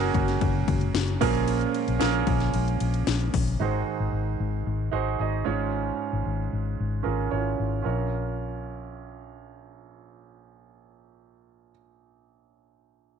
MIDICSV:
0, 0, Header, 1, 5, 480
1, 0, Start_track
1, 0, Key_signature, -5, "minor"
1, 0, Tempo, 531444
1, 1331, Time_signature, 4, 2, 24, 8
1, 11918, End_track
2, 0, Start_track
2, 0, Title_t, "Grand piano"
2, 0, Program_c, 0, 0
2, 0, Control_c, 0, 64, 127
2, 0, Note_on_c, 0, 49, 81
2, 0, Note_on_c, 0, 58, 79
2, 0, Note_on_c, 0, 61, 81
2, 0, Note_on_c, 0, 66, 75
2, 0, Note_on_c, 0, 68, 84
2, 0, Note_on_c, 0, 70, 99
2, 95, Note_off_c, 0, 49, 0
2, 725, Note_off_c, 0, 58, 0
2, 726, Note_off_c, 0, 66, 0
2, 727, Note_off_c, 0, 61, 0
2, 727, Note_off_c, 0, 68, 0
2, 730, Note_off_c, 0, 70, 0
2, 1091, Note_on_c, 0, 58, 95
2, 1091, Note_on_c, 0, 61, 92
2, 1091, Note_on_c, 0, 65, 98
2, 1092, Note_on_c, 0, 46, 84
2, 1093, Note_on_c, 0, 53, 84
2, 1094, Note_on_c, 0, 68, 90
2, 1095, Note_on_c, 0, 70, 110
2, 1102, Control_c, 0, 64, 0
2, 1243, Control_c, 0, 64, 127
2, 1721, Note_off_c, 0, 58, 0
2, 1721, Note_off_c, 0, 61, 0
2, 1721, Note_off_c, 0, 65, 0
2, 1723, Note_off_c, 0, 68, 0
2, 1724, Note_off_c, 0, 70, 0
2, 1775, Note_off_c, 0, 46, 0
2, 1775, Note_off_c, 0, 53, 0
2, 1800, Note_on_c, 0, 58, 85
2, 1802, Note_on_c, 0, 61, 87
2, 1803, Note_on_c, 0, 65, 78
2, 1808, Note_on_c, 0, 68, 75
2, 1810, Note_on_c, 0, 70, 95
2, 2646, Note_off_c, 0, 58, 0
2, 2646, Note_off_c, 0, 61, 0
2, 2647, Note_off_c, 0, 65, 0
2, 2649, Note_off_c, 0, 68, 0
2, 2650, Note_off_c, 0, 70, 0
2, 3249, Note_on_c, 0, 63, 71
2, 3252, Note_on_c, 0, 66, 63
2, 3256, Note_on_c, 0, 44, 63
2, 3258, Note_on_c, 0, 51, 61
2, 3259, Note_on_c, 0, 68, 65
2, 3260, Control_c, 0, 64, 0
2, 3263, Note_on_c, 0, 72, 73
2, 3395, Control_c, 0, 64, 127
2, 3936, Note_off_c, 0, 44, 0
2, 3937, Note_off_c, 0, 51, 0
2, 4090, Note_off_c, 0, 63, 0
2, 4091, Note_off_c, 0, 66, 0
2, 4094, Note_off_c, 0, 68, 0
2, 4097, Note_off_c, 0, 72, 0
2, 4439, Note_on_c, 0, 63, 74
2, 4447, Note_on_c, 0, 66, 64
2, 4449, Note_on_c, 0, 68, 65
2, 4450, Note_on_c, 0, 72, 74
2, 4654, Note_off_c, 0, 63, 0
2, 4658, Note_off_c, 0, 66, 0
2, 4659, Note_off_c, 0, 68, 0
2, 4660, Note_off_c, 0, 72, 0
2, 4692, Note_on_c, 0, 66, 53
2, 4693, Note_on_c, 0, 63, 64
2, 4695, Note_on_c, 0, 68, 57
2, 4704, Note_on_c, 0, 75, 65
2, 4914, Note_off_c, 0, 68, 0
2, 4918, Note_on_c, 0, 61, 79
2, 4923, Note_on_c, 0, 65, 65
2, 4927, Note_on_c, 0, 56, 60
2, 4927, Note_on_c, 0, 68, 66
2, 4928, Note_on_c, 0, 44, 61
2, 4929, Note_on_c, 0, 73, 76
2, 4930, Note_off_c, 0, 63, 0
2, 4930, Note_off_c, 0, 66, 0
2, 4936, Note_off_c, 0, 75, 0
2, 4940, Control_c, 0, 64, 0
2, 5118, Control_c, 0, 64, 127
2, 5611, Note_off_c, 0, 56, 0
2, 5612, Note_off_c, 0, 44, 0
2, 5764, Note_off_c, 0, 61, 0
2, 5767, Note_off_c, 0, 65, 0
2, 5769, Note_off_c, 0, 68, 0
2, 5770, Note_off_c, 0, 73, 0
2, 6348, Note_on_c, 0, 61, 61
2, 6355, Note_on_c, 0, 68, 56
2, 6356, Note_on_c, 0, 65, 56
2, 6357, Note_on_c, 0, 70, 69
2, 6568, Note_off_c, 0, 61, 0
2, 6572, Note_off_c, 0, 65, 0
2, 6572, Note_off_c, 0, 68, 0
2, 6573, Note_off_c, 0, 70, 0
2, 6599, Note_on_c, 0, 61, 55
2, 6601, Note_on_c, 0, 64, 42
2, 6604, Note_on_c, 0, 68, 49
2, 6604, Note_on_c, 0, 73, 64
2, 6661, Note_on_c, 0, 65, 50
2, 6662, Note_off_c, 0, 64, 0
2, 7024, Note_off_c, 0, 61, 0
2, 7027, Note_off_c, 0, 68, 0
2, 7027, Note_off_c, 0, 73, 0
2, 7055, Note_off_c, 0, 65, 0
2, 7065, Note_on_c, 0, 61, 58
2, 7078, Note_on_c, 0, 65, 56
2, 7083, Note_on_c, 0, 34, 56
2, 7088, Note_on_c, 0, 70, 53
2, 7099, Note_on_c, 0, 73, 61
2, 7102, Control_c, 0, 64, 0
2, 7272, Control_c, 0, 64, 127
2, 10554, Note_off_c, 0, 61, 0
2, 10566, Note_off_c, 0, 65, 0
2, 10571, Note_off_c, 0, 34, 0
2, 10576, Note_off_c, 0, 70, 0
2, 10587, Note_off_c, 0, 73, 0
2, 11918, End_track
3, 0, Start_track
3, 0, Title_t, "Analog synth pad"
3, 0, Program_c, 1, 89
3, 0, Note_on_c, 1, 46, 81
3, 0, Note_on_c, 1, 56, 75
3, 0, Note_on_c, 1, 66, 88
3, 1073, Note_off_c, 1, 66, 0
3, 1086, Note_on_c, 1, 61, 81
3, 3212, Note_off_c, 1, 46, 0
3, 3213, Note_off_c, 1, 56, 0
3, 3224, Note_off_c, 1, 61, 0
3, 11918, End_track
4, 0, Start_track
4, 0, Title_t, "Fingered electric bass"
4, 0, Program_c, 2, 33
4, 130, Note_on_c, 2, 30, 99
4, 328, Note_off_c, 2, 30, 0
4, 377, Note_on_c, 2, 30, 109
4, 572, Note_off_c, 2, 30, 0
4, 619, Note_on_c, 2, 30, 110
4, 813, Note_off_c, 2, 30, 0
4, 853, Note_on_c, 2, 30, 99
4, 1049, Note_off_c, 2, 30, 0
4, 1099, Note_on_c, 2, 34, 101
4, 1489, Note_off_c, 2, 34, 0
4, 1700, Note_on_c, 2, 34, 87
4, 1795, Note_off_c, 2, 34, 0
4, 1825, Note_on_c, 2, 34, 99
4, 2016, Note_off_c, 2, 34, 0
4, 2050, Note_on_c, 2, 34, 100
4, 2247, Note_off_c, 2, 34, 0
4, 2299, Note_on_c, 2, 34, 104
4, 2492, Note_off_c, 2, 34, 0
4, 2537, Note_on_c, 2, 34, 96
4, 2731, Note_off_c, 2, 34, 0
4, 2774, Note_on_c, 2, 34, 97
4, 2969, Note_off_c, 2, 34, 0
4, 3018, Note_on_c, 2, 34, 96
4, 3211, Note_off_c, 2, 34, 0
4, 3251, Note_on_c, 2, 32, 83
4, 3447, Note_off_c, 2, 32, 0
4, 3614, Note_on_c, 2, 32, 70
4, 3710, Note_off_c, 2, 32, 0
4, 3726, Note_on_c, 2, 32, 73
4, 3924, Note_off_c, 2, 32, 0
4, 3976, Note_on_c, 2, 32, 78
4, 4169, Note_off_c, 2, 32, 0
4, 4215, Note_on_c, 2, 32, 92
4, 4409, Note_off_c, 2, 32, 0
4, 4452, Note_on_c, 2, 32, 79
4, 4647, Note_off_c, 2, 32, 0
4, 4694, Note_on_c, 2, 32, 72
4, 4888, Note_off_c, 2, 32, 0
4, 4940, Note_on_c, 2, 32, 80
4, 5329, Note_off_c, 2, 32, 0
4, 5537, Note_on_c, 2, 32, 73
4, 5632, Note_off_c, 2, 32, 0
4, 5655, Note_on_c, 2, 32, 72
4, 5849, Note_off_c, 2, 32, 0
4, 5898, Note_on_c, 2, 32, 71
4, 6091, Note_off_c, 2, 32, 0
4, 6143, Note_on_c, 2, 32, 76
4, 6334, Note_off_c, 2, 32, 0
4, 6376, Note_on_c, 2, 32, 80
4, 6570, Note_off_c, 2, 32, 0
4, 6616, Note_on_c, 2, 32, 70
4, 6809, Note_off_c, 2, 32, 0
4, 6862, Note_on_c, 2, 32, 71
4, 7053, Note_off_c, 2, 32, 0
4, 7095, Note_on_c, 2, 34, 67
4, 10584, Note_off_c, 2, 34, 0
4, 11918, End_track
5, 0, Start_track
5, 0, Title_t, "Drums"
5, 130, Note_on_c, 9, 36, 95
5, 133, Note_on_c, 9, 51, 61
5, 220, Note_off_c, 9, 36, 0
5, 223, Note_off_c, 9, 51, 0
5, 252, Note_on_c, 9, 38, 34
5, 254, Note_on_c, 9, 51, 48
5, 342, Note_off_c, 9, 38, 0
5, 344, Note_off_c, 9, 51, 0
5, 372, Note_on_c, 9, 51, 69
5, 374, Note_on_c, 9, 36, 92
5, 463, Note_off_c, 9, 51, 0
5, 464, Note_off_c, 9, 36, 0
5, 613, Note_on_c, 9, 36, 96
5, 613, Note_on_c, 9, 51, 69
5, 703, Note_off_c, 9, 36, 0
5, 703, Note_off_c, 9, 51, 0
5, 732, Note_on_c, 9, 51, 44
5, 822, Note_off_c, 9, 51, 0
5, 854, Note_on_c, 9, 38, 127
5, 860, Note_on_c, 9, 51, 69
5, 945, Note_off_c, 9, 38, 0
5, 950, Note_off_c, 9, 51, 0
5, 975, Note_on_c, 9, 51, 36
5, 1065, Note_off_c, 9, 51, 0
5, 1094, Note_on_c, 9, 36, 100
5, 1097, Note_on_c, 9, 46, 82
5, 1097, Note_on_c, 9, 51, 65
5, 1185, Note_off_c, 9, 36, 0
5, 1188, Note_off_c, 9, 46, 0
5, 1188, Note_off_c, 9, 51, 0
5, 1217, Note_on_c, 9, 51, 39
5, 1307, Note_off_c, 9, 51, 0
5, 1333, Note_on_c, 9, 51, 84
5, 1423, Note_off_c, 9, 51, 0
5, 1455, Note_on_c, 9, 51, 35
5, 1546, Note_off_c, 9, 51, 0
5, 1576, Note_on_c, 9, 51, 52
5, 1666, Note_off_c, 9, 51, 0
5, 1696, Note_on_c, 9, 51, 42
5, 1786, Note_off_c, 9, 51, 0
5, 1812, Note_on_c, 9, 38, 116
5, 1815, Note_on_c, 9, 51, 74
5, 1902, Note_off_c, 9, 38, 0
5, 1905, Note_off_c, 9, 51, 0
5, 1929, Note_on_c, 9, 51, 38
5, 2019, Note_off_c, 9, 51, 0
5, 2049, Note_on_c, 9, 36, 110
5, 2049, Note_on_c, 9, 51, 67
5, 2140, Note_off_c, 9, 36, 0
5, 2140, Note_off_c, 9, 51, 0
5, 2170, Note_on_c, 9, 38, 35
5, 2171, Note_on_c, 9, 51, 48
5, 2260, Note_off_c, 9, 38, 0
5, 2262, Note_off_c, 9, 51, 0
5, 2290, Note_on_c, 9, 51, 64
5, 2380, Note_off_c, 9, 51, 0
5, 2419, Note_on_c, 9, 51, 36
5, 2509, Note_off_c, 9, 51, 0
5, 2533, Note_on_c, 9, 51, 60
5, 2623, Note_off_c, 9, 51, 0
5, 2653, Note_on_c, 9, 51, 43
5, 2744, Note_off_c, 9, 51, 0
5, 2774, Note_on_c, 9, 38, 113
5, 2779, Note_on_c, 9, 51, 76
5, 2864, Note_off_c, 9, 38, 0
5, 2869, Note_off_c, 9, 51, 0
5, 2894, Note_on_c, 9, 51, 34
5, 2985, Note_off_c, 9, 51, 0
5, 3015, Note_on_c, 9, 36, 96
5, 3015, Note_on_c, 9, 46, 87
5, 3015, Note_on_c, 9, 51, 58
5, 3105, Note_off_c, 9, 46, 0
5, 3105, Note_off_c, 9, 51, 0
5, 3106, Note_off_c, 9, 36, 0
5, 3138, Note_on_c, 9, 51, 36
5, 3229, Note_off_c, 9, 51, 0
5, 11918, End_track
0, 0, End_of_file